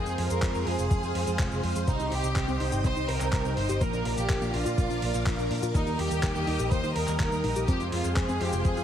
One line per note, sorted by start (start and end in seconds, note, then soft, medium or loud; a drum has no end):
0.00 0.64 G#3 medium
0.00 0.64 C4 medium
0.00 0.64 F4 medium
0.00 0.28 G#4 loud
0.00 1.86 G#4 medium
0.00 0.64 C5 medium
0.00 3.77 C5 medium
0.00 1.86 F5 medium
0.00 1.86 C6 loud
0.06 0.15 F2 medium
0.06 closed hi-hat soft
0.06 cabasa soft
0.18 0.27 F2 loud
0.18 open hi-hat loud
0.30 0.39 F2 medium
0.30 0.64 A#4 loud
0.30 closed hi-hat soft
0.30 cabasa medium
0.42 0.51 F2 loud
0.42 kick loud
0.42 clap loud
0.42 closed hi-hat medium
0.42 cabasa medium
0.55 0.63 F2 medium
0.55 cabasa soft
0.66 0.75 F2 loud
0.66 1.24 G#3 medium
0.66 1.24 C4 medium
0.66 1.24 F4 medium
0.66 1.63 G#4 medium
0.66 1.24 C5 medium
0.66 open hi-hat medium
0.79 0.87 F1 medium
0.79 closed hi-hat soft
0.79 cabasa medium
0.91 0.99 F2 loud
0.91 kick loud
0.91 closed hi-hat medium
0.91 cabasa medium
1.03 1.11 F2 medium
1.03 cabasa soft
1.15 1.23 F2 medium
1.15 open hi-hat loud
1.27 1.35 F2 medium
1.27 1.85 G#3 medium
1.27 1.85 C4 medium
1.27 1.85 F4 medium
1.27 1.85 C5 medium
1.27 closed hi-hat medium
1.27 cabasa medium
1.39 1.48 F1 loud
1.39 kick loud
1.39 clap loud
1.39 closed hi-hat medium
1.39 cabasa soft
1.51 1.60 F1 medium
1.51 cabasa soft
1.63 1.72 F2 medium
1.63 open hi-hat medium
1.75 1.84 F2 medium
1.75 closed hi-hat soft
1.75 cabasa medium
1.87 1.96 C2 loud
1.87 2.57 C3 medium
1.87 2.57 G3 medium
1.87 2.57 C4 medium
1.87 1.99 C4 medium
1.87 2.57 D#4 medium
1.87 2.10 D#4 loud
1.87 2.57 C5 medium
1.87 3.79 D#5 medium
1.87 3.79 G5 medium
1.87 3.79 D#6 loud
1.87 kick loud
1.87 closed hi-hat medium
1.87 cabasa medium
2.00 2.08 C2 medium
2.00 2.10 D#4 medium
2.00 closed hi-hat soft
2.00 cabasa soft
2.12 2.20 C2 medium
2.12 2.60 G4 loud
2.12 open hi-hat loud
2.24 2.32 C2 medium
2.24 closed hi-hat soft
2.24 cabasa medium
2.36 2.44 C2 loud
2.36 2.47 C5 medium
2.36 kick loud
2.36 clap loud
2.36 closed hi-hat medium
2.36 cabasa medium
2.48 2.56 C2 medium
2.48 2.59 C4 medium
2.48 cabasa soft
2.60 2.69 C2 loud
2.60 3.18 C3 medium
2.60 3.18 G3 medium
2.60 3.18 C4 medium
2.60 3.18 D#4 medium
2.60 2.71 D#4 medium
2.60 3.18 C5 medium
2.60 open hi-hat loud
2.72 2.81 G1 medium
2.72 2.83 G4 loud
2.72 closed hi-hat medium
2.72 cabasa medium
2.84 2.93 C2 loud
2.84 2.96 C4 medium
2.84 3.07 C5 loud
2.84 kick loud
2.84 closed hi-hat medium
2.84 cabasa medium
2.96 3.05 C2 medium
2.96 3.07 D#4 medium
2.96 cabasa soft
3.08 3.17 C2 medium
3.08 3.57 A#4 loud
3.08 open hi-hat loud
3.20 3.29 C2 medium
3.20 3.78 C3 medium
3.20 3.78 G3 medium
3.20 3.78 C4 medium
3.20 3.78 D#4 medium
3.20 3.78 C5 medium
3.20 clap soft
3.20 closed hi-hat medium
3.20 cabasa medium
3.33 3.41 C2 loud
3.33 3.44 C5 medium
3.33 kick loud
3.33 clap loud
3.33 closed hi-hat medium
3.33 cabasa medium
3.45 3.53 C2 medium
3.45 3.56 C4 medium
3.45 cabasa soft
3.57 3.65 G1 medium
3.57 3.68 D#4 medium
3.57 3.79 C5 loud
3.57 open hi-hat medium
3.69 3.77 G1 medium
3.69 3.80 G4 loud
3.69 closed hi-hat soft
3.69 cabasa medium
3.81 3.90 A#1 loud
3.81 4.51 A#2 medium
3.81 4.51 F3 medium
3.81 4.51 A#3 medium
3.81 3.93 A#3 medium
3.81 4.51 D4 medium
3.81 4.51 A#4 medium
3.81 7.64 A#4 medium
3.81 4.17 A#4 loud
3.81 5.73 D5 medium
3.81 5.73 F5 medium
3.81 5.73 D6 loud
3.81 kick loud
3.81 closed hi-hat medium
3.81 cabasa medium
3.93 4.02 A#1 medium
3.93 4.04 D4 medium
3.93 closed hi-hat soft
3.93 cabasa soft
4.05 4.14 A#1 loud
4.05 open hi-hat loud
4.17 4.26 A#1 medium
4.17 4.51 G4 loud
4.17 closed hi-hat medium
4.17 cabasa medium
4.29 4.38 A#1 loud
4.29 4.41 A#4 medium
4.29 kick loud
4.29 clap loud
4.29 closed hi-hat medium
4.29 cabasa medium
4.41 4.50 A#1 medium
4.41 4.52 A#3 medium
4.41 cabasa soft
4.53 4.62 A#1 medium
4.53 5.11 A#2 medium
4.53 5.11 F3 medium
4.53 5.11 A#3 medium
4.53 4.64 D4 medium
4.53 5.11 D4 medium
4.53 5.50 F4 medium
4.53 5.11 A#4 medium
4.53 open hi-hat loud
4.66 4.74 A#2 medium
4.66 4.76 F4 loud
4.66 closed hi-hat medium
4.66 cabasa medium
4.78 4.86 A#1 loud
4.78 4.89 A#3 medium
4.78 kick loud
4.78 closed hi-hat medium
4.78 cabasa medium
4.90 4.98 A#1 medium
4.90 5.01 D4 medium
4.90 cabasa soft
5.02 5.11 A#1 medium
5.02 open hi-hat loud
5.14 5.23 A#1 medium
5.14 5.72 A#2 medium
5.14 5.72 F3 medium
5.14 5.72 A#3 medium
5.14 5.72 D4 medium
5.14 5.72 A#4 medium
5.14 closed hi-hat medium
5.14 cabasa medium
5.26 5.35 A#1 loud
5.26 5.38 A#4 medium
5.26 kick loud
5.26 clap loud
5.26 closed hi-hat medium
5.26 cabasa medium
5.38 5.47 A#1 medium
5.38 5.49 A#3 medium
5.38 cabasa soft
5.50 5.59 A#2 medium
5.50 5.61 D4 medium
5.50 open hi-hat loud
5.62 5.71 A#2 medium
5.62 5.73 F4 loud
5.62 closed hi-hat medium
5.62 cabasa medium
5.75 5.83 D#2 loud
5.75 6.44 G3 medium
5.75 5.86 A#3 medium
5.75 6.44 A#3 medium
5.75 6.44 D#4 medium
5.75 5.97 D#4 loud
5.75 6.44 A#4 medium
5.75 7.66 D#5 medium
5.75 7.66 G5 medium
5.75 7.66 D#6 loud
5.75 kick loud
5.75 closed hi-hat medium
5.75 cabasa medium
5.87 5.95 D#2 medium
5.87 5.97 D#4 medium
5.87 closed hi-hat soft
5.87 cabasa soft
5.99 6.07 D#2 loud
5.99 6.71 G4 loud
5.99 open hi-hat loud
6.11 6.19 D#2 medium
6.11 closed hi-hat medium
6.11 cabasa medium
6.23 6.31 D#2 loud
6.23 6.34 A#4 medium
6.23 kick loud
6.23 clap loud
6.23 closed hi-hat medium
6.23 cabasa medium
6.35 6.44 D#2 medium
6.35 6.46 A#3 medium
6.35 cabasa soft
6.47 6.56 D#2 loud
6.47 7.05 G3 medium
6.47 7.05 A#3 medium
6.47 6.58 D#4 medium
6.47 7.05 D#4 medium
6.47 7.05 A#4 medium
6.47 open hi-hat loud
6.59 6.68 A#1 medium
6.59 6.70 G4 loud
6.59 closed hi-hat medium
6.59 cabasa medium
6.71 6.80 D#2 loud
6.71 6.83 A#3 medium
6.71 6.94 C5 loud
6.71 kick loud
6.71 closed hi-hat medium
6.71 cabasa medium
6.83 6.92 D#2 medium
6.83 6.94 D#4 medium
6.83 cabasa soft
6.96 7.04 D#2 medium
6.96 7.18 A#4 loud
6.96 open hi-hat loud
7.07 7.16 D#2 medium
7.07 7.65 G3 medium
7.07 7.65 A#3 medium
7.07 7.65 D#4 medium
7.07 7.65 A#4 medium
7.07 clap soft
7.07 cabasa medium
7.20 7.28 D#2 loud
7.20 7.65 A#4 loud
7.20 7.31 A#4 medium
7.20 kick loud
7.20 clap loud
7.20 closed hi-hat medium
7.20 cabasa medium
7.32 7.40 D#2 medium
7.32 7.43 A#3 medium
7.32 cabasa soft
7.44 7.52 A#1 loud
7.44 7.55 D#4 medium
7.44 open hi-hat loud
7.56 7.65 A#1 medium
7.56 7.67 G4 loud
7.56 closed hi-hat medium
7.56 cabasa medium
7.68 7.77 F2 loud
7.68 8.38 G#3 medium
7.68 8.38 C4 medium
7.68 7.80 C4 medium
7.68 8.38 F4 medium
7.68 7.92 G4 loud
7.68 8.84 G#4 medium
7.68 8.38 C5 medium
7.68 8.84 C5 medium
7.68 8.84 F5 medium
7.68 8.84 C6 medium
7.68 kick loud
7.68 closed hi-hat medium
7.68 cabasa medium
7.80 7.89 F2 medium
7.80 7.91 F4 medium
7.80 closed hi-hat soft
7.80 cabasa soft
7.92 8.01 F2 loud
7.92 8.15 F4 medium
7.92 open hi-hat loud
8.04 8.13 F2 medium
8.04 closed hi-hat medium
8.04 cabasa medium
8.16 8.25 F2 loud
8.16 8.39 G#4 loud
8.16 8.28 C5 medium
8.16 kick loud
8.16 clap loud
8.16 closed hi-hat medium
8.16 cabasa soft
8.29 8.37 F2 medium
8.29 8.39 C4 medium
8.29 cabasa soft
8.41 8.49 F2 medium
8.41 8.84 G#3 medium
8.41 8.84 C4 medium
8.41 8.51 F4 medium
8.41 8.84 F4 medium
8.41 8.65 G4 medium
8.41 8.84 C5 medium
8.41 open hi-hat loud
8.53 8.61 F1 medium
8.53 8.64 G#4 loud
8.53 closed hi-hat medium
8.53 cabasa medium
8.65 8.73 F2 loud
8.65 8.76 C4 medium
8.65 8.84 G#4 loud
8.65 kick loud
8.65 closed hi-hat medium
8.65 cabasa soft
8.77 8.84 F2 medium
8.77 8.84 F4 medium
8.77 closed hi-hat soft
8.77 cabasa soft